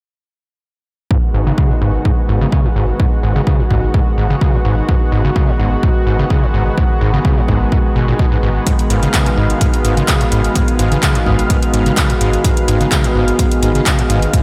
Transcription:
1.11 G#2 D#3 G#3 B3 F#4, kick
1.32 G#1 G#2 G#5
1.47 C#3 F#4
1.58 C#3, kick
1.66 D#5
1.70 G#2
1.81 G#1 G#2
2.05 G#2, kick
2.29 G#1 G#2
2.41 C#3
2.52 C#3, kick
2.65 G#2
2.76 G#1 G#2
3.00 G#2, kick
3.23 G#1 G#2
3.36 C#3
3.47 C#3, kick
3.59 G#2
3.70 G#1 G#2, kick
3.94 G#2, kick
4.18 G#1 G#2
4.30 C#3
4.41 C#3, kick
4.54 G#2
4.65 G#1 G#2
4.89 G#2, kick
5.12 G#1 G#2
5.25 C#3
5.36 C#3, kick
5.48 G#2
5.59 G#1 G#2
5.83 G#2, kick
6.07 G#1 G#2
6.19 C#3
6.30 C#3, kick
6.43 G#2
6.54 G#1 G#2
6.78 G#2, kick
7.01 G#1 G#2
7.14 C#3
7.25 C#3, kick
7.37 G#2
7.48 G#1 G#2, kick
7.72 G#2, kick
7.96 G#1 B2
8.08 A#2
8.19 B2, kick
8.32 G#2
8.43 G#1 G#2
8.67 G#2 F5, kick, closed hi-hat
8.79 closed hi-hat
8.90 G#1 G#2, closed hi-hat
9.03 C#3, closed hi-hat
9.14 C#3, kick, clap, closed hi-hat
9.26 G#2, closed hi-hat
9.37 G#1 G#2
9.50 closed hi-hat
9.61 G#2, kick, closed hi-hat
9.74 closed hi-hat
9.85 G#1 G#2, closed hi-hat
9.97 C#3, closed hi-hat
10.08 C#3, kick, clap, closed hi-hat
10.21 G#2, closed hi-hat
10.32 G#1 G#2, closed hi-hat
10.44 closed hi-hat
10.55 G#2, kick, closed hi-hat
10.68 closed hi-hat
10.79 G#1 G#2, closed hi-hat
10.92 C#3, closed hi-hat
11.03 C#3, kick, clap, closed hi-hat
11.15 G#2, closed hi-hat
11.26 G#1 G#2, kick
11.39 closed hi-hat
11.50 G#2, kick, closed hi-hat
11.62 closed hi-hat
11.74 G#1 G#2, closed hi-hat
11.86 C#3, closed hi-hat
11.97 C#3, kick, clap, closed hi-hat
12.10 G#2, closed hi-hat
12.21 G#1 G#2, closed hi-hat
12.33 closed hi-hat
12.44 G#2, kick, closed hi-hat
12.57 closed hi-hat
12.68 G#1 G#2, closed hi-hat
12.81 C#3, closed hi-hat
12.92 C#3, kick, clap, closed hi-hat
13.04 G#2, closed hi-hat
13.15 G#1 G#2
13.28 closed hi-hat
13.39 G#2, kick, closed hi-hat
13.52 closed hi-hat
13.63 G#1 G#2, closed hi-hat
13.75 C#3, closed hi-hat
13.86 C#3, kick, clap, closed hi-hat
13.99 G#2, closed hi-hat
14.10 G#1 G#2, closed hi-hat
14.22 closed hi-hat
14.33 G#2, kick, closed hi-hat

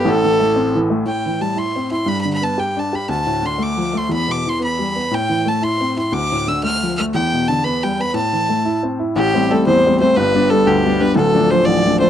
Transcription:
Already playing: G4
0.05 A1 A2 A4
0.24 E3
0.40 A3
0.56 C4
0.75 E3
0.90 A3
1.06 A2 G5
1.26 E3
1.41 G3 A5
1.56 E4 C6
1.76 C4
1.91 E4 C6
2.06 G2 B5
2.21 B5
2.25 D3
2.33 B5
2.41 B3 A5
2.58 G4 G5
2.77 D4 A5
2.93 G4 B5
3.09 D2 A5
3.26 A2
3.43 D3 C6
3.58 A3
3.63 D6
3.77 F3
3.93 A3 C6
4.09 E2 B5
4.28 B2 D6
4.45 E3 C6
4.60 B3
4.64 B5
4.79 G3
4.96 B3
5.11 A2 G5
5.29 E3
5.46 A3 A5
5.62 E4 C6
5.81 C4
5.97 E4 C6
6.12 D2 D6
6.32 A2
6.48 D3 E6
6.63 A3 F6
6.83 F3
6.98 A3 F6
7.13 E2 G5
7.33 B2
7.48 D3 A5
7.64 B3 B5
7.83 G3 G5
8.00 B3 B5
8.14 A2 A5
8.33 E3
8.49 A3
8.65 E4
8.83 C4
8.99 E4
9.16 A1 A2 G4
9.34 G3 A3 C4
9.51 G3 A3 C4 A4
9.67 E2 C5
9.86 G3 A3 C4
10.00 G3 A3 C4 C5
10.16 G1 G2 B4
10.34 G3 B3 D4
10.50 G3 B3 D4 A4
10.67 D2 G4
10.85 G3 B3 D4
11.00 G3 B3 D4 B4
11.16 D1 D2 A4
11.35 F3 A3 D4
11.50 F3 A3 D4 C5
11.65 A1 D5
11.85 F3 A3 D4
12.00 F3 A3 D4 C5

